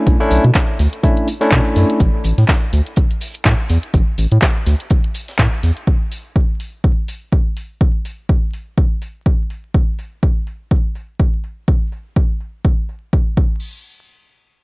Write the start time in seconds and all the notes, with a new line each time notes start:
Already playing: A3 C#4 D4 E4
0.07 B1, kick, closed hi-hat
0.20 A3 C#4 D4 E4
0.31 B1, closed hi-hat, open hi-hat
0.44 B2, closed hi-hat
0.55 kick, snare, clap, closed hi-hat
0.79 D2, snare, closed hi-hat, open hi-hat
0.93 closed hi-hat
1.03 A3 C#4 D4 E4, kick, closed hi-hat
1.17 closed hi-hat
1.28 closed hi-hat, open hi-hat
1.41 A3 C#4 D4 E4, snare, closed hi-hat
1.51 B2, kick, snare, clap, closed hi-hat
1.76 F#2, snare, closed hi-hat, open hi-hat
1.90 closed hi-hat
2.00 A1, kick, closed hi-hat
2.24 A1, closed hi-hat, open hi-hat
2.38 A2, snare, closed hi-hat
2.48 kick, snare, clap, closed hi-hat
2.73 D2, closed hi-hat, open hi-hat
2.86 closed hi-hat
2.96 kick, closed hi-hat
3.11 closed hi-hat
3.21 open hi-hat
3.34 closed hi-hat
3.45 A2, kick, snare, clap, closed hi-hat
3.70 E2, snare, closed hi-hat, open hi-hat
3.83 closed hi-hat
3.94 A1, kick, closed hi-hat
4.18 A1, closed hi-hat, open hi-hat
4.31 A2, closed hi-hat
4.42 kick, snare, clap, closed hi-hat
4.66 D2, snare, closed hi-hat, open hi-hat
4.80 closed hi-hat
4.90 kick, closed hi-hat
5.04 closed hi-hat
5.14 closed hi-hat, open hi-hat
5.28 snare, closed hi-hat
5.39 A2, kick, snare, clap, closed hi-hat
5.63 E2, snare, closed hi-hat, open hi-hat
5.77 closed hi-hat
5.87 kick
6.12 open hi-hat
6.36 kick
6.60 open hi-hat
6.84 kick
7.08 open hi-hat
7.32 kick
7.57 open hi-hat
7.81 kick
8.05 open hi-hat
8.29 kick
8.53 open hi-hat
8.78 kick
9.02 open hi-hat
9.26 kick
9.50 open hi-hat
9.74 kick
9.99 open hi-hat
10.23 kick
10.47 open hi-hat
10.71 kick
10.95 open hi-hat
11.20 kick
11.44 open hi-hat
11.68 kick
11.92 open hi-hat
12.16 kick
12.41 open hi-hat
12.65 kick
12.89 open hi-hat
13.13 kick
13.37 kick, crash